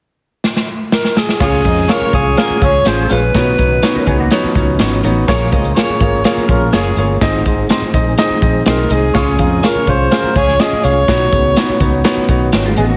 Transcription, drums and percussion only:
0.44 snare
0.56 snare
0.92 snare
1.05 snare
1.17 snare
1.29 snare
1.40 kick, snare, crash
1.64 kick, closed hi-hat
1.76 closed hi-hat
1.89 snare, closed hi-hat
2.13 kick, closed hi-hat
2.37 snare, closed hi-hat
2.62 kick, closed hi-hat
2.86 snare, closed hi-hat
3.10 closed hi-hat
3.35 kick, snare, closed hi-hat
3.58 kick, closed hi-hat
3.83 snare, closed hi-hat
4.06 kick, closed hi-hat
4.31 snare, closed hi-hat
4.55 kick, closed hi-hat
4.79 snare, closed hi-hat
4.93 closed hi-hat
5.04 closed hi-hat
5.28 kick, snare, closed hi-hat
5.52 kick, closed hi-hat
5.64 closed hi-hat
5.77 snare, closed hi-hat
6.00 kick, closed hi-hat
6.24 snare, closed hi-hat
6.49 kick, closed hi-hat
6.73 snare, closed hi-hat
6.96 closed hi-hat
7.21 kick, snare, closed hi-hat
7.45 kick, closed hi-hat
7.70 snare, closed hi-hat
7.94 kick, closed hi-hat
8.18 snare, closed hi-hat
8.42 kick, closed hi-hat
8.66 snare, closed hi-hat
8.90 closed hi-hat
9.15 kick, snare, closed hi-hat
9.39 kick, closed hi-hat
9.63 snare, closed hi-hat
9.87 kick, closed hi-hat
10.11 snare, closed hi-hat
10.36 kick, closed hi-hat
10.48 snare
10.59 snare, closed hi-hat
10.84 closed hi-hat
11.08 kick, snare, closed hi-hat
11.32 kick, closed hi-hat
11.56 snare, closed hi-hat
11.80 kick, closed hi-hat
12.04 snare, closed hi-hat
12.29 kick, closed hi-hat
12.52 snare, closed hi-hat
12.66 closed hi-hat
12.77 closed hi-hat

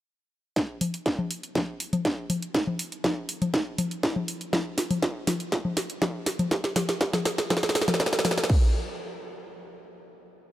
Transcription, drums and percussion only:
0.56 kick, snare, closed hi-hat
0.81 open hi-hat, low conga
0.94 open hi-hat
1.06 kick, snare, closed hi-hat
1.19 low conga
1.31 open hi-hat
1.43 closed hi-hat
1.55 kick, snare, closed hi-hat, low conga
1.80 open hi-hat
1.93 closed hi-hat, low conga
2.05 kick, snare, closed hi-hat
2.30 open hi-hat, low conga
2.42 closed hi-hat
2.54 kick, snare, closed hi-hat
2.67 low conga
2.79 open hi-hat
2.92 closed hi-hat
3.04 kick, snare, closed hi-hat, low conga
3.29 open hi-hat
3.42 closed hi-hat, low conga
3.54 kick, snare, closed hi-hat
3.78 open hi-hat, low conga
3.91 closed hi-hat
4.03 kick, snare, closed hi-hat
4.16 low conga
4.28 open hi-hat
4.41 closed hi-hat
4.53 kick, snare, closed hi-hat, low conga
4.78 snare, open hi-hat
4.91 open hi-hat, low conga
5.02 kick, snare, closed hi-hat
5.27 snare, open hi-hat, low conga
5.40 closed hi-hat
5.52 kick, snare, closed hi-hat
5.65 low conga
5.77 snare, open hi-hat
5.90 closed hi-hat
6.02 kick, snare, closed hi-hat, low conga
6.26 snare, open hi-hat
6.39 closed hi-hat, low conga
6.51 kick, snare, closed hi-hat
6.64 snare
6.76 snare, open hi-hat, low conga
6.89 snare, open hi-hat
7.01 kick, snare, closed hi-hat
7.13 snare, low conga
7.25 snare, open hi-hat
7.38 snare, closed hi-hat
7.50 kick, snare, closed hi-hat, low conga
7.57 snare
7.63 snare
7.69 snare
7.75 snare, open hi-hat
7.81 snare
7.88 snare, closed hi-hat, low conga
7.94 snare
8.00 kick, snare, closed hi-hat
8.06 snare
8.13 snare
8.19 snare
8.25 snare, open hi-hat, low conga
8.31 snare
8.38 snare, closed hi-hat
8.44 snare
8.49 kick, crash

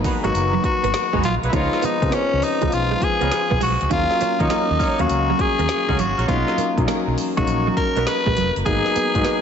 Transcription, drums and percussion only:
0.04 kick, open hi-hat, tambourine
0.24 closed hi-hat
0.35 closed hi-hat, tambourine
0.64 kick, closed hi-hat
0.84 closed hi-hat
0.94 snare, closed hi-hat, tambourine
1.13 kick
1.23 closed hi-hat, tambourine
1.43 closed hi-hat
1.53 kick, closed hi-hat, tambourine
1.73 snare
1.82 closed hi-hat, tambourine
2.02 kick, closed hi-hat
2.12 snare, closed hi-hat, tambourine
2.42 open hi-hat, tambourine
2.62 kick, closed hi-hat
2.72 closed hi-hat, tambourine
3.02 kick, closed hi-hat
3.21 closed hi-hat
3.32 snare, closed hi-hat, tambourine
3.51 kick
3.61 open hi-hat, tambourine
3.81 closed hi-hat
3.91 kick, closed hi-hat, tambourine
4.11 snare
4.21 closed hi-hat, tambourine
4.40 kick, closed hi-hat
4.50 snare, closed hi-hat, tambourine
4.80 kick, open hi-hat, tambourine
4.99 closed hi-hat
5.09 closed hi-hat, tambourine
5.39 kick, closed hi-hat
5.59 closed hi-hat
5.69 snare, closed hi-hat, tambourine
5.89 kick
5.99 closed hi-hat, tambourine
6.19 closed hi-hat
6.28 kick, closed hi-hat, tambourine
6.48 snare
6.58 closed hi-hat, tambourine
6.78 kick, closed hi-hat
6.88 snare, closed hi-hat, tambourine
7.18 open hi-hat, tambourine
7.37 kick, closed hi-hat
7.47 closed hi-hat, tambourine
7.77 kick, closed hi-hat
7.96 closed hi-hat
8.07 snare, closed hi-hat, tambourine
8.26 kick
8.36 closed hi-hat, tambourine
8.56 closed hi-hat
8.66 kick, closed hi-hat, tambourine
8.86 snare
8.96 closed hi-hat, tambourine
9.15 kick, closed hi-hat
9.25 snare, closed hi-hat, tambourine

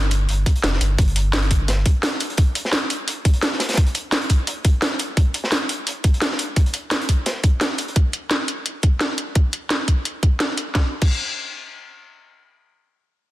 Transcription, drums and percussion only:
0.11 closed hi-hat
0.29 closed hi-hat
0.46 kick, closed hi-hat
0.56 closed hi-hat
0.63 snare, closed hi-hat
0.73 snare
0.81 closed hi-hat
0.98 kick, closed hi-hat
1.08 closed hi-hat
1.16 closed hi-hat
1.33 snare, closed hi-hat
1.42 closed hi-hat
1.51 kick, closed hi-hat
1.68 snare, closed hi-hat
1.86 kick, closed hi-hat
2.03 snare, closed hi-hat
2.20 closed hi-hat
2.30 closed hi-hat
2.37 kick, closed hi-hat
2.55 closed hi-hat
2.65 snare
2.72 snare, closed hi-hat
2.90 closed hi-hat
3.08 closed hi-hat
3.25 kick, closed hi-hat
3.33 closed hi-hat
3.42 snare, closed hi-hat
3.52 snare
3.60 snare, closed hi-hat
3.69 snare, closed hi-hat
3.73 snare, closed hi-hat
3.77 kick, closed hi-hat
3.86 closed hi-hat
3.95 closed hi-hat
4.12 snare, closed hi-hat
4.21 closed hi-hat
4.29 kick, closed hi-hat
4.47 closed hi-hat
4.65 kick, closed hi-hat
4.82 snare, closed hi-hat
4.99 closed hi-hat
5.17 kick, closed hi-hat
5.34 closed hi-hat
5.44 snare
5.51 snare, closed hi-hat
5.69 closed hi-hat
5.87 closed hi-hat
6.04 kick, closed hi-hat
6.14 closed hi-hat
6.22 snare, closed hi-hat
6.31 snare
6.39 closed hi-hat
6.56 kick, closed hi-hat
6.66 closed hi-hat
6.73 closed hi-hat
6.91 snare, closed hi-hat
7.01 closed hi-hat
7.09 kick, closed hi-hat
7.26 snare, closed hi-hat
7.43 kick, closed hi-hat
7.61 snare, closed hi-hat
7.78 closed hi-hat
7.88 closed hi-hat
7.96 kick, closed hi-hat
8.13 closed hi-hat
8.31 snare, closed hi-hat
8.48 closed hi-hat
8.66 closed hi-hat
8.83 kick, closed hi-hat
9.01 snare, closed hi-hat
9.18 closed hi-hat
9.35 kick, closed hi-hat
9.53 closed hi-hat
9.70 snare, closed hi-hat
9.88 kick, closed hi-hat
10.05 closed hi-hat
10.23 kick, closed hi-hat
10.40 snare, closed hi-hat
10.58 closed hi-hat
10.75 kick, snare
11.02 kick, crash

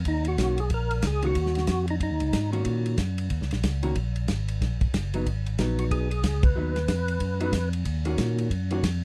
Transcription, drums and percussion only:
0.05 kick, ride
0.25 ride
0.38 kick, snare, hi-hat pedal, ride
0.58 ride
0.70 kick, ride
0.91 ride
1.02 kick, snare, hi-hat pedal, ride
1.22 ride
1.35 kick, ride
1.46 snare
1.55 snare, ride
1.67 kick, snare, hi-hat pedal, ride
1.88 ride
2.00 kick, ride
2.20 ride
2.33 kick, snare, hi-hat pedal, ride
2.53 ride
2.65 kick, ride
2.86 ride
2.98 kick, snare, hi-hat pedal, ride
3.18 ride
3.30 kick, ride
3.42 snare
3.51 snare, ride
3.63 kick, snare, hi-hat pedal, ride
3.83 ride
3.95 kick, ride
4.16 ride
4.28 kick, snare, hi-hat pedal, ride
4.48 ride
4.61 kick, snare, ride
4.81 kick, ride
4.94 kick, snare, hi-hat pedal, ride
5.14 ride
5.26 kick, ride
5.46 ride
5.58 kick, snare, hi-hat pedal, ride
5.79 ride
5.91 kick, ride
6.11 ride
6.23 kick, snare, hi-hat pedal, ride
6.43 kick, ride
6.76 snare, ride
6.88 kick, snare, hi-hat pedal, ride
7.08 ride
7.20 kick, ride
7.40 ride
7.53 kick, snare, hi-hat pedal, ride
7.73 ride
7.85 kick, ride
8.05 ride
8.18 kick, snare, hi-hat pedal, ride
8.38 ride
8.50 kick, ride
8.71 ride
8.83 kick, snare, hi-hat pedal, ride

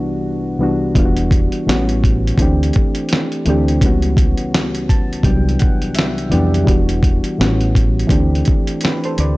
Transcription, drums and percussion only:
0.95 kick, closed hi-hat
1.17 closed hi-hat
1.31 kick, closed hi-hat
1.52 closed hi-hat
1.69 snare, closed hi-hat
1.89 closed hi-hat
2.04 kick, closed hi-hat
2.27 closed hi-hat
2.38 kick, closed hi-hat
2.63 closed hi-hat
2.73 kick, closed hi-hat
2.95 closed hi-hat
3.09 closed hi-hat
3.13 snare
3.32 closed hi-hat
3.46 closed hi-hat
3.68 closed hi-hat
3.81 kick, closed hi-hat
4.02 closed hi-hat
4.17 kick, closed hi-hat
4.37 closed hi-hat
4.54 snare, closed hi-hat
4.75 closed hi-hat
4.89 kick, closed hi-hat
5.13 closed hi-hat
5.23 kick, closed hi-hat
5.49 closed hi-hat
5.59 kick, closed hi-hat
5.82 closed hi-hat
5.95 closed hi-hat
5.99 snare
6.18 closed hi-hat
6.32 closed hi-hat
6.54 closed hi-hat
6.67 kick, closed hi-hat
6.89 closed hi-hat
7.03 kick, closed hi-hat
7.24 closed hi-hat
7.41 snare, closed hi-hat
7.61 closed hi-hat
7.75 kick, closed hi-hat
7.99 closed hi-hat
8.09 kick, closed hi-hat
8.35 closed hi-hat
8.45 kick, closed hi-hat
8.67 closed hi-hat
8.81 closed hi-hat
8.85 snare
9.04 closed hi-hat
9.18 closed hi-hat

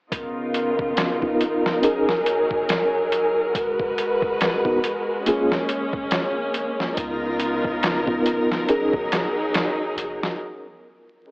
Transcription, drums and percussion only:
0.12 kick, closed hi-hat
0.54 closed hi-hat
0.79 kick
0.97 snare, closed hi-hat
1.22 kick
1.41 closed hi-hat
1.66 snare
1.83 closed hi-hat
2.09 snare
2.26 closed hi-hat
2.51 kick
2.69 snare, closed hi-hat
3.12 closed hi-hat
3.55 kick, closed hi-hat
3.80 kick
3.98 closed hi-hat
4.22 kick
4.41 snare, closed hi-hat
4.65 kick
4.84 closed hi-hat
5.26 closed hi-hat
5.52 snare
5.69 closed hi-hat
5.93 kick
6.11 snare, closed hi-hat
6.54 closed hi-hat
6.80 snare
6.97 kick, closed hi-hat
7.40 closed hi-hat
7.64 kick
7.83 snare, closed hi-hat
8.07 kick
8.26 closed hi-hat
8.52 snare
8.69 closed hi-hat
8.93 kick
9.12 snare, closed hi-hat
9.54 snare, closed hi-hat
9.98 closed hi-hat
10.23 snare

